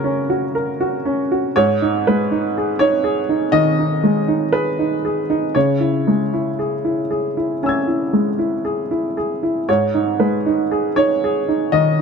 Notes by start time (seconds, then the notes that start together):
Already playing: C#3 C#4 F#4 A#4 C#5
0.04 C#4
0.30 F#4
0.55 A#4
0.81 F#4
1.05 C#4
1.32 F#4
1.56 G#2 C#5
1.82 D#4
2.07 G#3 B4
2.31 D#4
2.58 G#4
2.79 D#4 C#5
3.04 G#4
3.29 D#4
3.52 D#3 D#5
3.79 D#4
4.04 G#3
4.28 D#4
4.53 G#4 B4
4.79 D#4
5.05 G#4
5.30 D#4
5.55 C#3 C#5
5.80 E4
6.07 G#3
6.34 E4
6.59 G#4
6.85 E4
7.11 G#4
7.37 E4
7.63 C#4 G#5 E6
7.69 G#6
7.87 E4
8.13 G#3
8.39 E4
8.65 G#4
8.91 E4
9.17 G#4
9.43 E4
9.69 G#2 C#5
9.94 D#4
10.20 G#3 B4
10.46 D#4
10.71 G#4
10.96 D#4 C#5
11.24 G#4
11.48 D#4
11.72 D#3 D#5